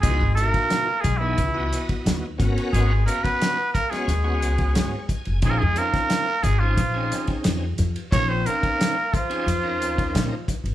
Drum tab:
RD |x-xxx-x-x-xxx-xx|x-xxx-xxx-xxx-xx|x-xxx-x-x-xxx-xx|x-xxx-xxx-xxx-xx|
HH |p-p-p-p-p-p-p-p-|p-p-p-p-p-p-p-p-|p-p-p-p-p-p-p-p-|p-p-p-p-p-p-p-p-|
SD |----o-------o-o-|----o--o----o---|---oo-----o-o-o-|----o-------o-o-|
BD |o--o--o-o--o--o-|---o--o----o--o-|o--o--o-o--o----|o--o--o----o--o-|